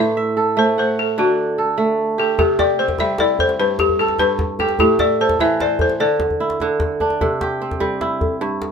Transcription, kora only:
0.00 1.22 A2 medium
0.00 0.17 G4 medium
0.00 0.95 C5 medium
0.00 0.27 D5 medium
0.17 1.20 E5 medium
0.37 1.58 A4 medium
0.57 1.77 A3 medium
0.78 1.74 F#5 medium
1.18 2.43 D3 medium
1.18 2.86 D4 medium
1.58 2.90 A4 medium
1.78 3.77 A3 medium
2.18 2.58 G4 medium
2.39 3.64 C3 medium
2.59 4.00 G4 medium
2.80 4.60 C4 medium
3.00 3.64 G3 medium
3.20 4.77 E4 medium
3.60 4.19 G2 medium
4.01 5.20 A4 medium
4.20 4.84 G2 medium
4.60 6.01 G4 medium
4.80 6.05 A2 medium
5.00 6.03 E5 medium
5.21 6.53 A4 medium
5.40 6.05 E3 medium
5.61 6.80 C5 medium
6.00 6.60 D3 medium
6.40 7.97 E4 medium
6.61 7.26 D3 medium
7.01 8.69 D4 medium
7.21 8.46 C3 medium
7.42 8.72 G4 medium
7.62 8.72 C4 medium
7.80 8.46 G3 medium
8.01 8.72 E4 medium
8.41 8.72 G2 medium

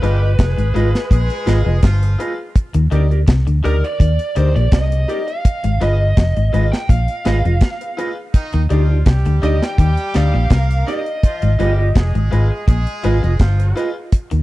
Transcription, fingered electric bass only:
0.03 0.34 G1 loud
0.39 0.56 F1 loud
0.58 0.73 G#1 loud
0.76 0.92 G#1 loud
1.11 1.28 A#1 medium
1.47 1.64 G#1 loud
1.66 1.81 F1 medium
1.83 2.15 G1 loud
2.75 2.90 D#2 loud
2.92 3.23 D2 loud
3.28 3.45 C2 medium
3.48 3.62 D2 medium
3.65 3.81 D2 loud
4.00 4.17 D#2 loud
4.37 4.53 D2 loud
4.56 4.71 A#1 medium
4.72 5.04 C2 loud
5.65 5.79 G#1 loud
5.82 6.13 G1 loud
6.17 6.34 F1 loud
6.37 6.51 G#1 medium
6.54 6.70 G#1 loud
6.89 7.06 A#1 loud
7.26 7.43 G#1 medium
7.45 7.60 F1 medium
8.54 8.69 D#2 loud
8.71 9.02 D2 loud
9.07 9.23 C2 medium
9.26 9.41 D2 medium
9.43 9.59 D2 medium
9.79 9.95 D#2 medium
10.15 10.32 D2 loud
10.34 10.49 A#1 medium
10.51 10.82 C2 loud
11.43 11.57 G#1 loud
11.60 11.91 G1 loud
11.96 12.12 F1 loud
12.16 12.30 G#1 loud
12.33 12.49 G#1 medium
12.68 12.85 A#1 medium
13.05 13.21 G#1 medium
13.24 13.39 F1 medium
13.40 13.72 G1 loud
14.33 14.43 D#2 loud

